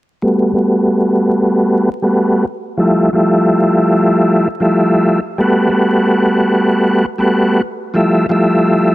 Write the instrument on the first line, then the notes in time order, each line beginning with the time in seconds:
tonewheel organ
0.22 G3 A3 B3 F#4
0.53 G3 A3 B3 F#4
2.02 G3 A3 B3 F#4
2.78 F3 G3 A3 E4
3.13 F3 G3 A3 E4
4.60 F3 G3 A3 E4
5.38 G3 A3 B3 F#4
5.69 G3 A3 B3 F#4
7.18 G3 A3 B3 F#4
7.94 F3 G3 A3 E4
8.29 F3 G3 A3 E4